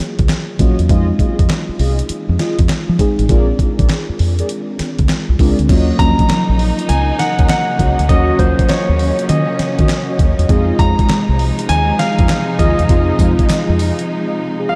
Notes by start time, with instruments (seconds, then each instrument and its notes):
Already playing: fm electric piano F#3 A#3 C#4 F4 G#4
0.00 snare
0.19 fingered electric bass C#2, kick, closed hi-hat
0.29 snare, clap, closed hi-hat
0.59 fingered electric bass A#1, fm electric piano F#3 A#3 C#4 F4, analog polysynth F#4 C#5 D#5, kick, closed hi-hat
0.79 fingered electric bass E2, closed hi-hat
0.89 fingered electric bass F2, fm electric piano G#3 C4 D#4 F4, analog polysynth F4 G#4 D#5, kick, closed hi-hat
1.19 analog polysynth F4 G#4 D#5, kick, closed hi-hat
1.39 fingered electric bass F2, kick, closed hi-hat
1.50 snare, clap, closed hi-hat
1.69 muted fingered electric bass stroke
1.79 fingered electric bass C2, analog polysynth F4 G#4 D#5, open hi-hat
1.99 closed hi-hat
2.09 muted fingered electric bass stroke, closed hi-hat
2.29 fingered electric bass F2
2.39 analog polysynth F4 G#4 D#5, snare, closed hi-hat
2.59 fingered electric bass F2, kick, closed hi-hat
2.69 snare, clap, closed hi-hat
2.89 fingered electric bass F3
2.99 fm electric piano G#3 C4 D#4 G#4, kick, closed hi-hat
3.19 fingered electric bass A1, closed hi-hat
3.29 fingered electric bass A#1, fm electric piano G#3 C4 D4 F4, analog polysynth G#4 A#4 D5, kick, closed hi-hat
3.59 kick, closed hi-hat
3.79 fingered electric bass A#1, analog polysynth G#4 A#4 D5, kick, closed hi-hat
3.89 snare, clap, closed hi-hat
4.09 muted fingered electric bass stroke
4.19 fingered electric bass F2, open hi-hat
4.39 analog polysynth G#4 A#4 D5, closed hi-hat
4.49 closed hi-hat
4.79 muted fingered electric bass stroke, snare, closed hi-hat
4.99 fingered electric bass D2, kick, closed hi-hat
5.09 snare, clap, closed hi-hat
5.29 fingered electric bass C2
5.39 fingered electric bass C#2, fm electric piano G#3 C4 D4 F4, analog polysynth G#4 A#4 D5, kick, open hi-hat
5.59 fingered electric bass D2, closed hi-hat
5.69 fingered electric bass D#2, string section C#3 F#3 A#3 D#4, fm electric piano F#3 A#3 C#4 F4, analog polysynth F#4 C#5 D#5, kick, closed hi-hat, crash
5.99 fingered electric bass D#2, fm electric piano F3 A#3 C#4 F4, grand piano A#5, kick, closed hi-hat
6.06 fm electric piano F#3
6.19 kick, closed hi-hat
6.30 muted fingered electric bass stroke, snare, clap, closed hi-hat
6.49 fingered electric bass A#1
6.59 open hi-hat
6.79 closed hi-hat
6.89 fingered electric bass C#2, grand piano G#5, closed hi-hat
7.19 grand piano F#5, snare, closed hi-hat
7.39 fingered electric bass D#2, analog polysynth F#4 C#5 D#5, kick, closed hi-hat
7.49 grand piano F#5, snare, clap, closed hi-hat
7.79 fingered electric bass C#2, analog polysynth F#4 C#5 D#5, kick, closed hi-hat
7.99 fingered electric bass D2, closed hi-hat
8.09 fingered electric bass D#2, fm electric piano F#3 A#3 C#4 F#4, string section C#4, analog polysynth F#4 C#5 D#5, grand piano D#5, kick, closed hi-hat
8.39 fingered electric bass D#2, fm electric piano F#3 A#3 C#4 F4, grand piano C5, kick, closed hi-hat
8.59 kick, closed hi-hat
8.69 grand piano C#5, muted fingered electric bass stroke, snare, clap, closed hi-hat
8.89 fingered electric bass D#2
8.99 open hi-hat
9.19 closed hi-hat
9.29 fingered electric bass D#3, grand piano D#5, closed hi-hat
9.59 muted fingered electric bass stroke, snare, closed hi-hat
9.79 fingered electric bass D#3, analog polysynth F#4 C#5 D#5, kick, closed hi-hat
9.89 snare, clap, closed hi-hat
10.09 analog polysynth F#4 C#5 D#5
10.19 fingered electric bass D#2, kick, closed hi-hat
10.39 fingered electric bass E2, analog polysynth F#4 C#5 D#5, closed hi-hat
10.49 fingered electric bass F2, string section C3 F3 G#3 D#4, fm electric piano G#3 C4 D#4 F4, analog polysynth F4 G#4 D#5, kick, closed hi-hat
10.79 fingered electric bass F2, fm electric piano G#3 C4 D#4 F4, grand piano A#5, kick, closed hi-hat
10.99 kick, closed hi-hat
11.09 muted fingered electric bass stroke, snare, clap, closed hi-hat
11.29 fingered electric bass C2
11.39 open hi-hat
11.59 closed hi-hat
11.69 fingered electric bass D#2, grand piano G#5, closed hi-hat
11.99 grand piano F5, snare, closed hi-hat
12.19 fingered electric bass F2, analog polysynth F4 G#4 D#5, kick, closed hi-hat
12.29 snare, clap, closed hi-hat
12.59 fingered electric bass D#2, analog polysynth F4 G#4 D#5, grand piano D#5, kick, closed hi-hat
12.79 fingered electric bass E2, closed hi-hat
12.89 fingered electric bass F2, fm electric piano G#3 C4 D#4 F4, analog polysynth F4 G#4 D#5, kick, closed hi-hat
13.19 fingered electric bass F2, fm electric piano G#3 C4 D#4 F4, kick, closed hi-hat, tambourine
13.39 kick, closed hi-hat
13.49 muted fingered electric bass stroke, snare, clap, closed hi-hat, tambourine
13.69 fingered electric bass F2
13.79 open hi-hat, tambourine
13.99 closed hi-hat
14.59 analog polysynth F4 G#4 D#5
14.69 grand piano F5